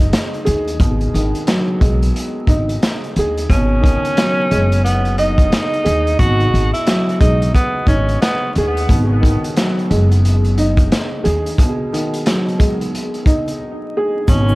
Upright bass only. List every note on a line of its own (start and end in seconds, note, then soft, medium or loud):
0.47 0.74 D#2 medium
0.80 1.07 G#1 loud
1.14 1.31 G#1 medium
1.81 2.09 B1 medium
2.48 2.75 G#1 medium
3.16 3.44 D#2 medium
3.50 3.94 G#1 loud
4.52 5.48 F#1 medium
5.86 6.13 D#2 medium
6.20 6.47 G#1 loud
6.54 6.70 G#1 medium
7.21 7.48 B1 medium
7.87 8.15 G#1 medium
8.56 8.83 D#2 medium
8.89 9.33 G#1 loud
9.91 10.88 F#1 loud
11.26 11.53 D#2 medium
14.28 14.55 G#1 loud